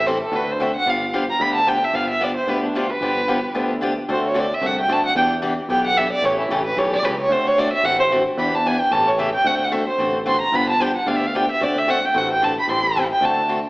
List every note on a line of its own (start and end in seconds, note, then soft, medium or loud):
0.00 0.22 A1 medium
0.07 0.17 E3 medium
0.07 0.17 G3 medium
0.07 0.17 C4 medium
0.07 0.17 E4 medium
0.07 0.17 A4 medium
0.07 0.22 C5 medium
0.23 0.37 A4 medium
0.32 0.75 D2 medium
0.32 0.51 D3 medium
0.32 0.51 A3 medium
0.32 0.51 C4 medium
0.32 0.51 F#4 medium
0.32 0.51 A4 medium
0.32 0.53 B4 medium
0.51 0.63 C5 medium
0.60 0.70 D3 medium
0.60 0.70 A3 medium
0.60 0.70 C4 medium
0.60 0.71 F#4 medium
0.60 0.71 A4 medium
0.60 0.75 E5 medium
0.76 0.91 F#5 loud
0.86 1.29 G1 medium
0.86 1.05 D3 medium
0.86 1.05 F3 medium
0.86 1.05 B3 medium
0.86 1.05 D4 medium
0.86 1.05 G4 medium
0.86 1.15 F5 medium
1.13 1.24 D3 medium
1.13 1.24 F3 medium
1.13 1.24 B3 medium
1.13 1.24 D4 medium
1.13 1.24 G4 medium
1.30 1.43 A#5 medium
1.40 1.83 D2 medium
1.40 1.58 D3 medium
1.40 1.59 F3 medium
1.40 1.59 B3 medium
1.40 1.59 D4 medium
1.40 1.59 G4 medium
1.40 1.54 B5 loud
1.55 1.70 A5 medium
1.66 1.77 D3 medium
1.66 1.77 F3 medium
1.66 1.77 B3 medium
1.66 1.77 D4 medium
1.66 1.78 G4 medium
1.66 1.86 G5 medium
1.84 1.96 E5 medium
1.93 2.37 G1 medium
1.93 2.12 D3 medium
1.93 2.12 F3 medium
1.93 2.12 B3 medium
1.93 2.12 D4 medium
1.93 2.12 G4 medium
1.93 2.10 F5 medium
2.10 2.25 E5 medium
2.21 2.31 D3 medium
2.21 2.31 F3 medium
2.21 2.31 B3 medium
2.21 2.31 D4 medium
2.21 2.31 G4 medium
2.21 2.36 D5 medium
2.37 2.51 C5 medium
2.47 2.91 D2 medium
2.47 2.66 D3 medium
2.47 2.66 F3 medium
2.47 2.66 B3 medium
2.47 2.66 D4 medium
2.47 2.67 G4 medium
2.47 2.64 B4 medium
2.65 2.79 D4 medium
2.75 2.85 D3 medium
2.75 2.85 F3 medium
2.75 2.85 B3 medium
2.75 2.86 D4 medium
2.75 2.92 F4 medium
2.75 2.85 G4 medium
2.91 3.56 B4 loud
3.01 3.44 G1 medium
3.01 3.20 D3 medium
3.01 3.20 F3 medium
3.01 3.20 B3 medium
3.01 3.20 D4 medium
3.01 3.20 G4 medium
3.28 3.38 D3 medium
3.28 3.38 F3 medium
3.28 3.39 B3 medium
3.28 3.39 D4 medium
3.28 3.39 G4 medium
3.55 3.98 D2 medium
3.55 3.73 D3 medium
3.55 3.73 F3 medium
3.55 3.73 B3 medium
3.55 3.73 D4 medium
3.55 3.74 G4 medium
3.81 3.92 D3 medium
3.81 3.92 F3 medium
3.81 3.92 B3 medium
3.81 3.92 D4 medium
3.81 3.92 G4 medium
4.08 4.52 D2 medium
4.08 4.27 D3 medium
4.08 4.27 A3 medium
4.08 4.27 C4 medium
4.08 4.27 F#4 medium
4.08 4.27 A4 medium
4.08 4.24 C5 medium
4.27 4.41 C#5 medium
4.34 4.45 D3 medium
4.34 4.45 A3 medium
4.34 4.46 C4 medium
4.34 4.46 F#4 medium
4.34 4.46 A4 medium
4.39 4.56 D5 medium
4.54 4.68 E5 medium
4.61 4.85 C2 medium
4.61 4.80 D3 medium
4.61 4.80 A3 medium
4.61 4.80 C4 medium
4.61 4.81 F#4 medium
4.61 4.80 A4 medium
4.66 4.79 F#5 medium
4.81 4.94 G5 medium
4.88 5.12 D2 medium
4.88 4.99 D3 medium
4.88 4.99 A3 medium
4.88 5.00 C4 medium
4.88 4.99 F#4 medium
4.88 5.00 A4 medium
4.93 5.05 A5 medium
5.06 5.16 F#5 medium
5.15 5.59 E2 medium
5.15 5.34 E3 medium
5.15 5.34 B3 medium
5.15 5.34 D4 medium
5.15 5.35 G4 medium
5.15 5.26 G5 medium
5.42 5.53 E3 medium
5.42 5.53 B3 medium
5.42 5.53 D4 medium
5.42 5.53 G4 medium
5.69 6.12 B1 medium
5.69 5.88 E3 medium
5.69 5.88 B3 medium
5.69 5.88 D4 medium
5.69 5.88 G4 medium
5.69 5.84 G5 medium
5.87 5.99 F#5 loud
5.96 6.07 E3 medium
5.96 6.07 B3 medium
5.96 6.07 D4 medium
5.96 6.07 G4 medium
5.96 6.12 E5 medium
6.12 6.26 D5 loud
6.22 6.44 A1 medium
6.22 6.42 C#3 medium
6.22 6.42 E3 medium
6.22 6.42 A3 medium
6.22 6.42 C#4 medium
6.22 6.42 G4 medium
6.22 6.39 C#5 medium
6.40 6.54 E4 soft
6.49 6.72 A1 medium
6.49 6.60 C#3 medium
6.49 6.61 E3 medium
6.49 6.61 A3 medium
6.49 6.61 C#4 medium
6.49 6.61 G4 loud
6.49 6.64 G4 medium
6.65 6.80 B4 medium
6.76 6.99 B1 medium
6.76 6.95 C#3 medium
6.76 6.95 E3 medium
6.76 6.96 A3 medium
6.76 6.96 C#4 medium
6.76 6.96 G4 medium
6.76 6.92 C#5 medium
6.93 7.06 D5 loud
7.02 7.26 C#2 medium
7.02 7.14 C#3 medium
7.02 7.14 E3 medium
7.02 7.14 A3 medium
7.02 7.14 C#4 medium
7.02 7.14 G4 medium
7.02 7.19 B4 medium
7.20 7.34 C#5 loud
7.29 7.73 D2 medium
7.29 7.49 D3 medium
7.29 7.49 A3 medium
7.29 7.49 C4 medium
7.29 7.49 F#4 medium
7.29 7.49 A4 medium
7.29 7.49 C5 medium
7.47 7.61 C#5 loud
7.58 7.68 D3 medium
7.58 7.68 A3 medium
7.58 7.68 C4 medium
7.58 7.68 F#4 medium
7.58 7.68 A4 loud
7.58 7.73 D5 medium
7.73 7.86 E5 medium
7.84 8.27 A1 medium
7.84 8.03 D3 medium
7.84 8.03 A3 medium
7.84 8.03 C4 medium
7.84 8.03 F#4 medium
7.84 8.03 A4 medium
7.84 7.99 F#5 loud
8.00 8.07 C5 loud
8.12 8.22 D3 medium
8.12 8.22 A3 medium
8.12 8.22 C4 medium
8.12 8.22 F#4 medium
8.12 8.22 A4 medium
8.38 8.81 E2 medium
8.38 8.56 E3 medium
8.38 8.57 B3 medium
8.38 8.57 D4 medium
8.38 8.57 G4 medium
8.38 8.56 B5 medium
8.55 8.68 A5 medium
8.66 8.76 E3 medium
8.66 8.76 B3 medium
8.66 8.76 D4 medium
8.66 8.76 G4 medium
8.66 8.81 G#5 medium
8.80 8.93 G5 loud
8.91 9.35 A1 medium
8.91 9.10 C#3 medium
8.91 9.10 E3 medium
8.91 9.10 A3 medium
8.91 9.10 C#4 medium
8.91 9.11 G4 medium
8.91 9.09 A5 medium
9.08 9.21 C#5 medium
9.18 9.29 C#3 medium
9.18 9.29 E3 medium
9.18 9.29 A3 medium
9.18 9.29 C#4 medium
9.18 9.29 G4 loud
9.18 9.33 E5 medium
9.33 9.48 G5 loud
9.44 9.88 D2 medium
9.44 9.64 D3 medium
9.44 9.64 A3 medium
9.44 9.64 C4 medium
9.44 9.64 F#4 medium
9.44 9.64 A4 medium
9.44 9.57 F#5 medium
9.55 9.65 G5 loud
9.64 9.74 F#5 medium
9.72 9.82 D3 medium
9.72 9.82 A3 medium
9.72 9.82 C4 medium
9.72 9.83 F#4 medium
9.72 9.83 A4 medium
9.72 9.87 E5 medium
9.88 10.13 C5 medium
9.98 10.42 A1 medium
9.98 10.17 D3 medium
9.98 10.18 A3 medium
9.98 10.18 C4 medium
9.98 10.18 F#4 medium
9.98 10.18 A4 medium
10.26 10.36 D3 medium
10.26 10.36 A3 medium
10.26 10.36 C4 medium
10.26 10.36 F#4 medium
10.26 10.36 A4 medium
10.26 10.41 C6 medium
10.41 10.57 A#5 medium
10.52 10.96 G1 medium
10.52 10.72 D3 medium
10.52 10.71 F3 medium
10.52 10.72 B3 medium
10.52 10.72 D4 medium
10.52 10.72 G4 medium
10.52 10.69 B5 loud
10.70 10.84 A5 loud
10.80 10.90 D3 medium
10.80 10.90 F3 medium
10.80 10.91 B3 medium
10.80 10.91 D4 medium
10.80 10.91 G4 loud
10.80 10.95 G5 medium
10.96 11.09 F#5 medium
11.06 11.50 D2 medium
11.06 11.25 D3 medium
11.06 11.25 F3 medium
11.06 11.25 B3 medium
11.06 11.25 D4 medium
11.06 11.25 G4 medium
11.06 11.17 F5 medium
11.16 11.28 E5 medium
11.27 11.37 F5 medium
11.35 11.44 D3 medium
11.35 11.44 F3 medium
11.35 11.44 B3 medium
11.35 11.45 D4 medium
11.35 11.45 G4 medium
11.35 11.50 G5 medium
11.51 11.65 E5 medium
11.61 12.04 D2 medium
11.61 11.79 D3 medium
11.61 11.79 A3 medium
11.61 11.79 C4 medium
11.61 11.79 F#4 medium
11.61 11.80 A4 medium
11.61 11.80 D5 medium
11.78 11.91 E5 loud
11.88 11.98 D3 medium
11.88 11.98 A3 medium
11.88 11.98 C4 medium
11.88 11.98 F#4 medium
11.88 11.98 A4 medium
11.88 12.06 F#5 medium
12.05 12.19 G5 loud
12.14 12.58 A1 medium
12.14 12.32 D3 medium
12.14 12.33 A3 medium
12.14 12.32 C4 medium
12.14 12.33 F#4 medium
12.14 12.33 A4 medium
12.14 12.31 F#5 medium
12.33 12.46 G5 loud
12.42 12.52 D3 medium
12.42 12.52 A3 medium
12.42 12.52 C4 medium
12.42 12.52 F#4 medium
12.42 12.52 A4 medium
12.42 12.58 A5 medium
12.60 12.69 B5 loud
12.68 13.11 A1 medium
12.68 12.87 E3 medium
12.68 12.87 G3 medium
12.68 12.87 C4 medium
12.68 12.87 E4 medium
12.68 12.87 A4 medium
12.72 12.95 C6 medium
12.96 13.05 E3 medium
12.96 13.06 G3 medium
12.96 13.06 C4 medium
12.96 13.06 E4 medium
12.96 13.06 A4 loud
13.12 13.26 G5 loud
13.21 13.64 D2 medium
13.21 13.40 D3 medium
13.21 13.40 A3 medium
13.21 13.40 C4 medium
13.21 13.40 F#4 medium
13.21 13.41 A4 medium
13.25 13.38 A5 medium
13.48 13.59 D3 medium
13.48 13.59 A3 medium
13.48 13.59 C4 medium
13.48 13.59 F#4 medium
13.48 13.59 A4 medium